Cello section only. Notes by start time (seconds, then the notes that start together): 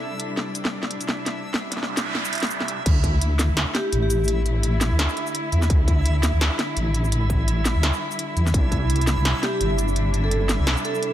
Already playing: C3 G3 D4
2.86 D3 A3 E4
5.70 G3
8.54 C3 D4